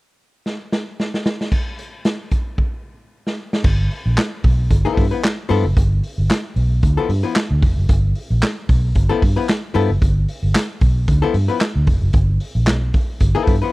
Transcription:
0.46 snare soft
0.72 snare medium
1.00 snare medium
1.14 snare medium
1.26 snare medium
1.41 snare medium
1.52 kick loud
1.52 crash medium
1.79 closed hi-hat medium
2.05 snare loud
2.05 closed hi-hat medium
2.31 kick medium
2.31 closed hi-hat medium
2.58 kick medium
3.27 snare medium
3.53 snare medium
3.64 3.87 G1 loud
3.64 kick loud
3.64 crash medium
3.91 open hi-hat medium
4.06 4.16 A#1 medium
4.18 snare loud
4.18 clap loud
4.18 closed hi-hat medium
4.44 4.67 B1 medium
4.44 kick medium
4.44 open hi-hat medium
4.70 4.83 G1 medium
4.70 kick medium
4.70 closed hi-hat medium
4.85 5.05 F3 medium
4.85 5.05 B3 medium
4.85 5.05 E4 medium
4.85 5.05 A4 medium
4.97 5.10 G2 loud
4.97 kick medium
4.97 open hi-hat medium
5.11 5.21 F3 soft
5.11 5.21 B3 medium
5.11 5.21 E4 medium
5.11 5.21 B4 medium
5.24 snare loud
5.24 clap loud
5.24 closed hi-hat medium
5.49 5.63 G2 loud
5.49 5.64 F3 medium
5.49 5.64 B3 medium
5.49 5.65 E4 medium
5.49 5.65 A4 medium
5.49 open hi-hat medium
5.65 5.75 F#1 medium
5.77 6.00 G1 loud
5.77 kick loud
5.77 closed hi-hat medium
6.03 open hi-hat medium
6.18 6.28 G1 medium
6.30 snare loud
6.30 clap loud
6.30 closed hi-hat medium
6.56 6.79 B1 medium
6.56 open hi-hat medium
6.83 6.96 D2 medium
6.83 kick medium
6.83 closed hi-hat medium
6.97 7.10 F3 medium
6.97 7.10 B3 medium
6.97 7.09 E4 medium
6.97 7.09 A4 medium
7.09 7.22 G2 loud
7.09 open hi-hat medium
7.23 7.33 F3 medium
7.23 7.33 B3 medium
7.23 7.33 E4 medium
7.23 7.33 B4 medium
7.35 snare loud
7.35 clap medium
7.35 closed hi-hat medium
7.51 7.61 D2 medium
7.62 7.76 F1 medium
7.62 kick loud
7.62 open hi-hat medium
7.78 7.88 F#1 medium
7.89 8.12 G1 loud
7.89 kick loud
7.89 closed hi-hat medium
8.15 open hi-hat medium
8.30 8.41 A#1 loud
8.42 snare loud
8.42 clap medium
8.42 closed hi-hat medium
8.69 8.92 B1 medium
8.69 kick medium
8.69 open hi-hat medium
8.95 9.09 G1 medium
8.95 kick medium
8.95 closed hi-hat medium
9.09 9.22 F3 medium
9.09 9.22 B3 medium
9.09 9.22 E4 medium
9.09 9.21 A4 medium
9.22 9.35 G2 medium
9.22 kick medium
9.22 open hi-hat medium
9.36 9.46 F3 medium
9.36 9.46 B3 medium
9.36 9.46 E4 medium
9.36 9.46 B4 medium
9.48 snare loud
9.48 clap medium
9.48 closed hi-hat medium
9.74 9.88 G2 loud
9.74 9.89 F3 medium
9.74 9.89 B3 medium
9.74 9.90 E4 medium
9.74 9.90 A4 loud
9.74 open hi-hat medium
9.90 10.00 F#1 medium
10.02 10.25 G1 loud
10.02 kick loud
10.02 closed hi-hat medium
10.28 open hi-hat medium
10.43 10.53 G1 medium
10.55 snare loud
10.55 clap loud
10.55 closed hi-hat loud
10.81 11.05 B1 medium
10.81 kick loud
10.81 open hi-hat medium
11.08 11.21 D2 medium
11.08 kick loud
11.08 closed hi-hat medium
11.22 11.35 F3 medium
11.22 11.35 B3 medium
11.22 11.34 E4 medium
11.22 11.34 A4 medium
11.34 11.47 G2 loud
11.34 open hi-hat medium
11.48 11.59 F3 medium
11.48 11.59 B3 medium
11.48 11.58 E4 medium
11.48 11.58 B4 medium
11.60 snare loud
11.60 clap medium
11.60 closed hi-hat medium
11.76 11.86 D2 medium
11.87 12.01 F1 medium
11.87 kick loud
11.87 open hi-hat medium
12.02 12.12 F#1 medium
12.13 12.37 G1 loud
12.13 kick loud
12.13 closed hi-hat medium
12.40 open hi-hat medium
12.55 12.67 A#1 medium
12.67 12.90 B1 medium
12.67 snare loud
12.67 clap medium
12.67 closed hi-hat medium
12.94 kick medium
12.94 open hi-hat medium
13.20 13.34 G1 loud
13.20 kick medium
13.20 closed hi-hat medium
13.35 13.55 F3 medium
13.35 13.55 B3 medium
13.35 13.55 E4 medium
13.35 13.55 A4 medium
13.47 13.61 G2 medium
13.47 kick medium
13.47 open hi-hat medium
13.62 13.72 F3 medium
13.62 13.72 B3 medium
13.62 13.71 E4 medium
13.62 13.71 B4 medium

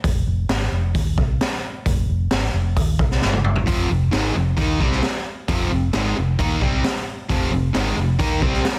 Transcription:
0.04 0.26 F1 medium
0.04 kick medium
0.04 open hi-hat soft
0.27 0.48 F1 medium
0.49 0.70 G#1 medium
0.49 snare loud
0.49 open hi-hat soft
0.72 0.93 F1 medium
0.95 1.16 D#2 medium
0.95 kick medium
0.95 open hi-hat soft
1.18 1.39 C2 medium
1.18 kick medium
1.41 snare loud
1.41 open hi-hat soft
1.86 2.07 F1 medium
1.86 kick medium
1.86 open hi-hat soft
2.09 2.30 F1 medium
2.31 2.52 G#1 medium
2.31 snare medium
2.31 open hi-hat soft
2.54 2.75 F1 medium
2.76 2.98 D#2 medium
2.76 kick medium
2.76 open hi-hat soft
2.99 3.20 C2 medium
2.99 kick loud
3.11 snare soft
3.22 3.65 G1 medium
3.22 snare medium
3.33 high tom soft
3.44 mid tom medium
3.56 floor tom medium
3.67 3.89 F1 medium
3.67 3.88 F2 medium
3.67 3.89 C3 medium
3.67 3.90 F3 loud
3.67 kick loud
3.67 open hi-hat soft
3.89 4.11 F1 medium
3.89 4.08 F2 medium
3.89 4.08 C3 medium
4.12 4.34 G#1 medium
4.12 4.34 G#2 medium
4.12 4.35 D#3 medium
4.12 4.35 G#3 medium
4.12 snare medium
4.12 open hi-hat soft
4.35 4.56 F1 medium
4.35 4.53 F2 medium
4.35 4.54 C3 medium
4.58 4.79 D#2 medium
4.58 4.80 D#3 medium
4.58 4.80 A#3 medium
4.58 4.80 D#4 medium
4.58 kick medium
4.58 open hi-hat soft
4.80 5.02 C2 medium
4.80 5.03 C3 medium
4.80 5.03 G3 medium
4.80 5.03 C4 medium
4.80 kick medium
4.92 snare soft
5.03 snare medium
5.03 open hi-hat soft
5.48 5.69 F1 medium
5.48 5.70 F2 medium
5.48 5.71 C3 medium
5.48 5.71 F3 loud
5.48 kick loud
5.48 open hi-hat soft
5.71 5.92 F1 medium
5.71 5.89 F2 medium
5.71 5.89 C3 medium
5.93 6.15 G#1 medium
5.93 6.15 G#2 medium
5.93 6.16 D#3 medium
5.93 6.16 G#3 medium
5.93 snare medium
5.93 open hi-hat soft
6.16 6.38 F1 medium
6.16 6.34 F2 medium
6.16 6.35 C3 medium
6.39 6.60 D#2 medium
6.39 6.61 D#3 medium
6.39 6.61 A#3 medium
6.39 6.62 D#4 loud
6.39 kick medium
6.39 open hi-hat soft
6.61 6.82 C2 medium
6.61 6.84 C3 medium
6.61 6.84 G3 medium
6.61 6.84 C4 medium
6.61 kick loud
6.84 snare medium
6.84 open hi-hat soft
7.29 7.50 F1 medium
7.29 7.51 F2 medium
7.29 7.51 C3 loud
7.29 7.52 F3 loud
7.29 kick loud
7.29 open hi-hat soft
7.52 7.73 F1 medium
7.52 7.70 F2 medium
7.52 7.70 C3 medium
7.73 7.95 G#1 medium
7.73 7.96 G#2 medium
7.73 7.96 D#3 medium
7.73 7.96 G#3 medium
7.73 snare loud
7.73 open hi-hat soft
7.97 8.18 F1 medium
7.97 8.16 F2 medium
7.97 8.16 C3 medium
8.19 8.41 D#2 medium
8.19 8.41 D#3 medium
8.19 8.42 A#3 medium
8.19 8.42 D#4 medium
8.19 kick medium
8.19 open hi-hat soft
8.42 8.63 C2 medium
8.42 8.64 C3 medium
8.42 8.64 G3 medium
8.42 8.64 C4 medium
8.42 kick loud
8.54 snare soft
8.65 snare medium
8.65 open hi-hat soft
8.76 snare soft

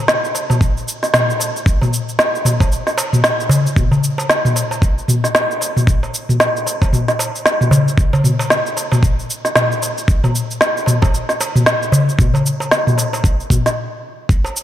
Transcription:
0.08 snare medium
0.08 cabasa soft
0.25 cabasa soft
0.35 darbuka ka soft
0.35 cabasa medium
0.50 mid tom medium
0.50 darbuka ka medium
0.50 cabasa soft
0.61 kick loud
0.61 cabasa soft
0.77 cabasa soft
0.88 cabasa medium
1.03 snare soft
1.03 cabasa soft
1.14 snare loud
1.14 mid tom medium
1.14 cabasa soft
1.30 cabasa soft
1.40 darbuka tek soft
1.40 cabasa medium
1.56 cabasa soft
1.66 kick loud
1.66 cabasa soft
1.82 mid tom medium
1.82 darbuka ka medium
1.82 cabasa soft
1.93 cabasa medium
2.09 cabasa soft
2.19 snare medium
2.19 cabasa soft
2.35 cabasa soft
2.45 mid tom medium
2.45 darbuka ka soft
2.45 cabasa medium
2.60 kick loud
2.60 darbuka ka medium
2.60 darbuka tek soft
2.60 cabasa soft
2.72 cabasa soft
2.87 snare soft
2.87 cabasa soft
2.98 darbuka tek medium
2.98 cabasa medium
3.13 mid tom medium
3.13 cabasa soft
3.24 snare loud
3.24 cabasa soft
3.40 cabasa soft
3.49 darbuka dum loud
3.49 cabasa medium
3.67 cabasa soft
3.76 kick loud
3.76 mid tom medium
3.76 cabasa soft
3.91 darbuka ka medium
3.91 darbuka dum medium
3.91 cabasa soft
4.04 cabasa medium
4.18 darbuka tek medium
4.18 cabasa soft
4.30 snare medium
4.30 cabasa soft
4.45 mid tom medium
4.45 cabasa soft
4.56 darbuka ka soft
4.56 cabasa medium
4.71 darbuka ka medium
4.71 darbuka tek soft
4.71 cabasa soft
4.82 kick loud
4.82 cabasa soft
4.98 cabasa soft
5.08 mid tom medium
5.08 cabasa medium
5.24 snare soft
5.24 cabasa soft
5.35 snare medium
5.35 cabasa soft
5.51 cabasa soft
5.61 darbuka tek soft
5.61 cabasa medium
5.77 mid tom medium
5.77 cabasa soft
5.87 kick loud
5.87 cabasa soft
6.03 darbuka ka medium
6.03 cabasa soft
6.14 cabasa medium
6.29 mid tom medium
6.29 cabasa soft
6.40 snare medium
6.40 cabasa soft
6.57 cabasa soft
6.67 darbuka ka soft
6.67 cabasa medium
6.82 kick medium
6.82 darbuka ka medium
6.82 darbuka tek soft
6.82 cabasa soft
6.93 mid tom medium
6.93 cabasa soft
7.08 snare soft
7.08 cabasa soft
7.19 darbuka tek medium
7.19 cabasa medium
7.36 cabasa soft
7.46 snare medium
7.46 cabasa soft
7.61 mid tom medium
7.61 cabasa soft
7.71 darbuka dum medium
7.71 cabasa medium
7.88 cabasa soft
7.98 kick loud
7.98 cabasa soft
8.13 darbuka ka medium
8.13 darbuka dum medium
8.13 cabasa soft
8.24 mid tom medium
8.24 cabasa medium
8.39 darbuka tek medium
8.39 cabasa soft
8.50 snare medium
8.50 cabasa soft
8.67 cabasa soft
8.77 darbuka ka medium
8.77 cabasa medium
8.92 mid tom medium
8.92 darbuka ka medium
8.92 cabasa soft
9.03 kick loud
9.03 cabasa soft
9.19 cabasa soft
9.30 cabasa medium
9.45 snare soft
9.45 cabasa soft
9.56 snare medium
9.56 mid tom medium
9.56 cabasa soft
9.72 cabasa soft
9.82 darbuka tek soft
9.82 cabasa medium
9.98 cabasa soft
10.08 kick loud
10.08 cabasa soft
10.24 mid tom medium
10.24 darbuka ka medium
10.24 cabasa soft
10.35 cabasa medium
10.51 cabasa soft
10.61 snare medium
10.61 cabasa soft
10.77 cabasa soft
10.86 mid tom medium
10.86 darbuka ka soft
10.86 cabasa medium
11.02 kick medium
11.02 darbuka ka medium
11.02 darbuka tek soft
11.02 cabasa soft
11.14 cabasa soft
11.29 snare soft
11.29 cabasa soft
11.41 darbuka tek medium
11.41 cabasa medium
11.56 mid tom medium
11.56 cabasa soft
11.66 snare medium
11.66 cabasa soft
11.83 cabasa soft
11.92 darbuka dum medium
11.92 cabasa medium
12.09 cabasa soft
12.19 kick loud
12.19 mid tom medium
12.19 cabasa soft
12.34 darbuka ka medium
12.34 darbuka dum medium
12.34 cabasa soft
12.46 cabasa medium
12.60 darbuka tek medium
12.60 cabasa soft
12.71 snare loud
12.71 cabasa soft
12.87 mid tom medium
12.87 cabasa soft
12.98 darbuka ka medium
12.98 cabasa medium
13.13 darbuka ka medium
13.13 cabasa soft
13.24 kick loud
13.24 cabasa soft
13.40 cabasa soft
13.50 kick medium
13.50 mid tom medium
13.50 cabasa medium
13.66 snare soft
13.66 cabasa soft
14.29 kick loud
14.29 cabasa soft
14.45 darbuka ka medium
14.45 cabasa soft
14.56 cabasa medium

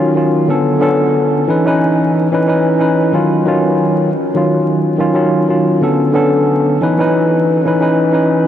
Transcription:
0.00 0.12 D#3 medium
0.00 0.12 F#3 medium
0.00 0.12 C#4 medium
0.00 0.13 F4 medium
0.15 0.45 D#3 medium
0.15 0.46 F#3 medium
0.15 0.46 C#4 medium
0.15 0.47 F4 medium
0.48 0.79 D3 medium
0.48 0.79 B3 medium
0.48 0.80 C#4 medium
0.48 0.80 A4 loud
0.80 1.42 D3 loud
0.80 1.43 B3 medium
0.80 1.43 C#4 medium
0.80 1.44 A4 loud
1.47 1.64 E3 loud
1.47 1.65 C#4 medium
1.47 1.65 D#4 medium
1.47 1.66 B4 loud
1.65 2.26 E3 medium
1.65 2.27 C#4 medium
1.65 2.27 D#4 medium
1.65 2.28 B4 loud
2.32 2.46 E3 loud
2.32 2.47 C#4 medium
2.32 2.47 D#4 medium
2.32 2.48 B4 loud
2.47 2.77 E3 medium
2.47 2.78 C#4 medium
2.47 2.79 D#4 medium
2.47 2.80 B4 medium
2.78 3.11 E3 medium
2.78 3.11 C#4 medium
2.78 3.12 D#4 medium
2.78 3.12 B4 medium
3.12 3.44 D#3 medium
3.12 3.45 F#3 medium
3.12 3.45 C#4 medium
3.12 3.46 F4 loud
3.46 4.09 D#3 loud
3.46 4.09 F#3 medium
3.46 4.10 C#4 medium
3.46 4.10 F4 loud
4.35 4.94 D#3 medium
4.35 4.95 F#3 medium
4.35 4.95 C#4 medium
4.35 4.96 F4 loud
4.98 5.12 D#3 loud
4.98 5.13 F#3 medium
4.98 5.14 C#4 medium
4.98 5.15 F4 loud
5.13 5.45 D#3 medium
5.13 5.45 F#3 medium
5.13 5.46 C#4 medium
5.13 5.46 F4 medium
5.48 5.79 D#3 medium
5.48 5.79 F#3 medium
5.48 5.80 C#4 medium
5.48 5.80 F4 medium
5.81 6.12 D3 medium
5.81 6.12 B3 medium
5.81 6.13 C#4 medium
5.81 6.13 A4 loud
6.13 6.76 D3 loud
6.13 6.76 B3 medium
6.13 6.77 C#4 medium
6.13 6.77 A4 loud
6.81 6.97 E3 loud
6.81 6.98 C#4 medium
6.81 6.99 D#4 medium
6.81 7.00 B4 loud
6.98 7.60 E3 medium
6.98 7.60 C#4 medium
6.98 7.61 D#4 medium
6.98 7.61 B4 loud
7.65 7.79 E3 loud
7.65 7.80 C#4 medium
7.65 7.81 D#4 medium
7.65 7.81 B4 loud
7.80 8.11 E3 medium
7.80 8.11 C#4 medium
7.80 8.12 D#4 medium
7.80 8.13 B4 medium
8.12 8.44 E3 medium
8.12 8.44 C#4 medium
8.12 8.45 D#4 medium
8.12 8.45 B4 medium

